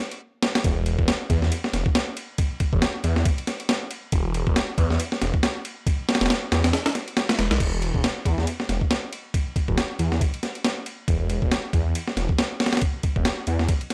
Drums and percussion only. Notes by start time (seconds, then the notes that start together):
0.12 ride
0.43 snare, ride
0.55 snare, ride
0.64 kick, ride
0.86 ride
0.99 kick
1.08 snare, ride
1.30 kick, ride
1.42 snare
1.52 ride
1.64 snare
1.73 snare, ride
1.86 kick
1.95 snare, ride
2.17 ride
2.38 kick, ride
2.60 kick, ride
2.73 kick
2.82 snare, ride
3.04 ride
3.16 snare
3.25 kick, ride
3.38 ride
3.47 snare, ride
3.60 ride
3.69 snare, ride
3.91 ride
4.12 kick, ride
4.34 ride
4.47 kick
4.56 snare, ride
4.78 kick, ride
4.90 snare
5.00 ride
5.12 snare
5.22 snare, ride
5.34 kick
5.43 snare, ride
5.65 ride
5.87 kick, ride
6.09 snare, ride
6.15 snare, ride
6.21 snare, ride
6.26 snare, ride
6.30 snare, ride
6.52 snare, ride
6.64 snare, ride
6.73 snare, ride
6.86 snare, ride
6.95 snare, ride
7.08 ride
7.17 snare, ride
7.29 snare, ride
7.39 snare, ride
7.51 snare, ride
7.60 kick, crash, ride
7.82 ride
7.94 kick
8.04 snare, ride
8.25 kick, ride
8.38 snare
8.47 ride
8.60 snare
8.69 snare, ride
8.81 kick
8.91 snare, ride
9.13 ride
9.34 kick, ride
9.56 kick, ride
9.68 kick
9.78 snare, ride
9.99 ride
10.12 snare
10.21 kick, ride
10.34 ride
10.43 snare, ride
10.55 ride
10.65 snare, ride
10.86 ride
11.08 kick, ride
11.30 ride
11.42 kick
11.51 snare, ride
11.73 kick, ride
11.95 ride
12.08 snare
12.17 snare, ride
12.29 kick
12.38 snare, ride
12.60 snare, ride
12.66 snare, ride
12.73 snare, ride
12.77 snare, ride
12.81 kick, ride
13.03 kick, ride
13.16 kick
13.25 snare, ride
13.47 ride
13.59 snare
13.69 kick, ride
13.81 ride
13.90 snare, ride